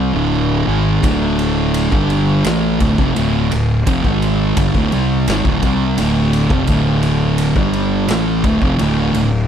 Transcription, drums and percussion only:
1.03 kick loud
1.03 ride medium
1.39 ride medium
1.74 ride medium
1.92 kick loud
2.10 ride medium
2.44 snare loud
2.44 ride medium
2.80 kick loud
2.80 ride medium
2.98 kick loud
3.16 ride medium
3.52 ride medium
3.87 kick loud
3.87 ride loud
4.04 kick loud
4.22 ride medium
4.57 kick loud
4.57 ride medium
4.75 kick medium
4.92 ride medium
5.28 snare loud
5.28 ride medium
5.45 kick loud
5.63 kick medium
5.63 ride medium
5.98 ride medium
6.33 ride medium
6.50 kick loud
6.67 kick loud
6.67 ride medium
7.03 ride medium
7.38 ride medium
7.56 kick loud
7.73 ride medium
8.08 snare loud
8.08 ride medium
8.44 kick loud
8.44 ride medium
8.62 kick loud
8.79 ride medium
9.14 ride medium

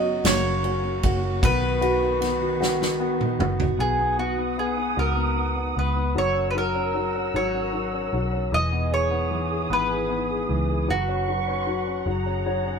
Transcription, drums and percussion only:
0.25 snare loud
0.25 ride medium
0.64 ride soft
1.03 kick medium
1.03 ride medium
1.43 kick loud
1.43 ride medium
1.82 ride soft
2.22 snare soft
2.22 ride medium
2.62 snare medium
2.82 snare medium
3.21 mid tom medium
3.40 mid tom medium
3.60 floor tom medium

